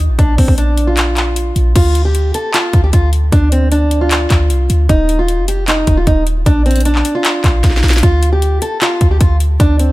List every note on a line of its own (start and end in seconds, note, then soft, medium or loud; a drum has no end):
0.00 0.10 D#2 loud
0.09 0.18 A#1 loud
0.19 0.38 A#1 loud
0.19 0.34 D4 loud
0.19 kick loud
0.19 closed hi-hat medium
0.38 0.48 A#1 loud
0.38 0.54 C4 medium
0.38 kick loud
0.38 open hi-hat medium
0.48 1.52 A#1 loud
0.48 kick loud
0.58 0.86 D4 medium
0.58 closed hi-hat medium
0.77 closed hi-hat medium
0.87 1.72 F4 medium
0.97 clap loud
0.97 closed hi-hat medium
1.17 clap medium
1.17 closed hi-hat medium
1.36 closed hi-hat medium
1.56 1.75 A#1 loud
1.56 closed hi-hat medium
1.75 2.32 D2 loud
1.75 2.03 F4 loud
1.75 kick loud
1.75 closed hi-hat medium
1.75 crash loud
1.95 closed hi-hat medium
2.05 2.33 G4 medium
2.15 closed hi-hat medium
2.34 2.50 A4 medium
2.34 closed hi-hat medium
2.54 2.82 F4 medium
2.54 clap loud
2.54 closed hi-hat medium
2.73 2.92 D2 loud
2.73 kick loud
2.73 closed hi-hat medium
2.84 2.91 G4 medium
2.93 3.31 D2 loud
2.93 3.09 F4 medium
2.93 kick loud
2.93 closed hi-hat medium
3.13 closed hi-hat medium
3.32 4.27 D2 loud
3.32 3.48 D4 loud
3.32 kick loud
3.32 closed hi-hat medium
3.52 3.68 C4 medium
3.52 closed hi-hat medium
3.72 3.99 D4 medium
3.72 closed hi-hat medium
3.91 closed hi-hat medium
4.01 4.85 F4 medium
4.11 clap loud
4.11 closed hi-hat medium
4.30 4.52 D2 loud
4.30 kick loud
4.30 clap medium
4.30 closed hi-hat medium
4.50 4.69 C2 loud
4.50 closed hi-hat medium
4.70 4.89 D2 loud
4.70 closed hi-hat medium
4.89 5.40 D#1 loud
4.89 5.17 D#4 loud
4.89 kick loud
4.89 closed hi-hat medium
5.09 closed hi-hat medium
5.19 5.46 F4 medium
5.28 closed hi-hat medium
5.38 5.85 F1 loud
5.48 5.63 G4 medium
5.48 closed hi-hat medium
5.68 5.95 D#4 medium
5.68 clap loud
5.68 closed hi-hat medium
5.87 6.06 D#1 loud
5.87 kick loud
5.87 closed hi-hat medium
5.97 6.05 F4 medium
6.07 6.45 D#1 loud
6.07 6.22 D#4 medium
6.07 kick loud
6.07 closed hi-hat medium
6.27 closed hi-hat medium
6.46 7.03 A#1 loud
6.46 6.62 D4 loud
6.46 kick loud
6.46 closed hi-hat medium
6.66 6.81 C4 medium
6.66 closed hi-hat soft
6.71 closed hi-hat medium
6.76 closed hi-hat medium
6.81 closed hi-hat medium
6.85 7.13 D4 medium
6.85 closed hi-hat medium
6.95 clap medium
7.05 closed hi-hat medium
7.15 7.99 F4 medium
7.25 clap loud
7.25 closed hi-hat medium
7.44 7.63 A#1 loud
7.44 kick loud
7.44 clap medium
7.44 closed hi-hat medium
7.64 7.83 A#1 loud
7.64 kick loud
7.64 snare medium
7.64 closed hi-hat medium
7.70 snare medium
7.77 snare medium
7.83 8.02 A#1 loud
7.83 snare medium
7.83 closed hi-hat soft
7.88 snare loud
7.88 closed hi-hat medium
7.93 snare medium
7.93 closed hi-hat medium
7.98 closed hi-hat medium
8.03 8.60 D2 loud
8.03 8.31 F4 loud
8.03 kick loud
8.03 closed hi-hat medium
8.23 closed hi-hat medium
8.32 8.60 G4 medium
8.42 closed hi-hat medium
8.62 8.77 A4 medium
8.62 closed hi-hat medium
8.81 9.09 F4 loud
8.81 clap loud
8.81 closed hi-hat medium
9.01 9.20 D2 loud
9.01 kick loud
9.01 closed hi-hat medium
9.11 9.19 G4 medium
9.21 9.58 D2 loud
9.21 9.36 F4 medium
9.21 kick loud
9.21 closed hi-hat medium
9.40 closed hi-hat medium
9.60 9.92 D2 loud
9.60 9.75 D4 loud
9.60 kick loud
9.60 closed hi-hat medium
9.79 9.92 C4 medium
9.79 closed hi-hat medium